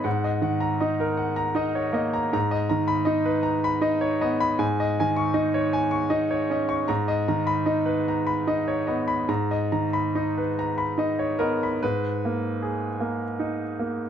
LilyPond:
<<
  \new Staff \with { instrumentName = "Grand piano" } { \time 3/4 \key gis \minor \tempo 4 = 78 << { fis''16 dis''16 fis''16 ais''16 dis''16 ais'16 fis''16 ais''16 dis''16 cis''16 dis''16 ais''16 | ais''16 dis''16 ais''16 b''16 dis''16 b'16 ais''16 b''16 dis''16 cis''16 dis''16 b''16 | gis''16 dis''16 gis''16 cis'''16 dis''16 cis''16 gis''16 cis'''16 dis''16 cis''16 dis''16 cis'''16 | ais''16 dis''16 ais''16 b''16 dis''16 b'16 ais''16 b''16 dis''16 cis''16 dis''16 b''16 |
ais''16 dis''16 ais''16 b''16 dis''16 b'16 ais''16 b''16 dis''16 cis''16 dis''16 b''16 | r2. | } \\ { r2. | r2. | r2. | r2. |
r2 r8 ais'8 | b'2. | } >> }
  \new Staff \with { instrumentName = "Grand piano" } { \time 3/4 \key gis \minor gis,8 dis8 dis'4 dis'8 ais8 | gis,8 dis8 dis'4 dis'8 b8 | gis,8 dis8 dis'4 dis'8 cis'8 | gis,8 dis8 dis'4 dis'8 b8 |
gis,8 dis8 dis'4 dis'8 b8 | gis,8 ais8 gis'8 ais8 dis'8 ais8 | }
>>